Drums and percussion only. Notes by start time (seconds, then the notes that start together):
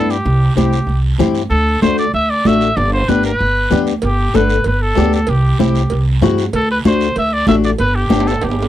0.10 short guiro
0.26 high conga, long guiro
0.57 high conga, short guiro
0.73 short guiro
0.89 high conga, long guiro
1.20 high conga, low conga, short guiro
1.35 short guiro
1.51 high conga, long guiro
1.82 high conga, short guiro
1.98 short guiro
2.14 high conga, long guiro
2.45 high conga, short guiro
2.61 short guiro
2.76 high conga, long guiro
3.08 high conga, short guiro
3.23 short guiro
3.39 high conga, long guiro
3.71 high conga, low conga, short guiro
3.87 short guiro
4.02 cowbell, high conga, long guiro
4.34 high conga, short guiro
4.50 short guiro
4.64 cowbell, high conga, long guiro
4.95 high conga, low timbale, short guiro
5.13 short guiro
5.27 cowbell, high conga, long guiro
5.60 high conga, short guiro
5.75 short guiro
5.90 cowbell, high conga, long guiro
6.22 high conga, low conga, low timbale, short guiro
6.38 short guiro
6.53 cowbell, high conga, long guiro
6.85 high conga, short guiro
7.01 short guiro
7.16 cowbell, high conga, long guiro
7.47 high conga, low timbale, short guiro
7.64 short guiro
7.78 cowbell, high conga, long guiro
8.10 high conga, high timbale, short guiro
8.20 high timbale
8.27 high timbale, short guiro
8.41 cowbell, high conga, high timbale, long guiro
8.51 low timbale
8.62 low timbale